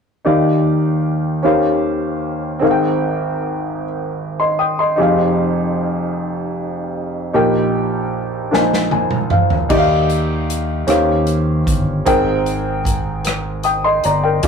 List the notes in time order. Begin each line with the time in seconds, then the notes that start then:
0.25 D#2 D#3 D#4 G4 D5 F5
1.43 D#2 D#3 C#4 G4 C5 F5
2.59 G#1 G#2 C4 G#4 A#4
2.64 F5
2.71 G5
4.40 D#5 C6
4.59 G5 D#6
4.79 D#5 C6
4.96 F1 F2 D#4 G4 G#4
5.02 F5
7.33 A#1 A#2 D#4 G4 A#4 G5
8.51 A#1 A#2 D4 A#4 C5 G#5, snare
8.58 D#4
8.73 snare
8.91 G#5, high tom
9.11 mid tom
9.30 F5, mid tom
9.50 floor tom
9.69 D#2 D#3 D#4 G4 D5 E5, kick, crash
9.78 F5
10.10 closed hi-hat
10.50 closed hi-hat
10.87 D#2 D#3 C#4 G4 C5 F5, cross-stick, closed hi-hat
11.27 closed hi-hat
11.67 G1, kick, closed hi-hat
12.05 G#1 G#2 C4 G#4 A#4 G5, kick, closed hi-hat
12.46 closed hi-hat
12.85 kick, closed hi-hat
13.25 cross-stick, closed hi-hat
13.63 G5 D#6, closed hi-hat
13.84 D#5 C6
14.04 G1 D5 A#5, closed hi-hat
14.24 A#4 G5
14.43 F1 G#3 F4, kick, closed hi-hat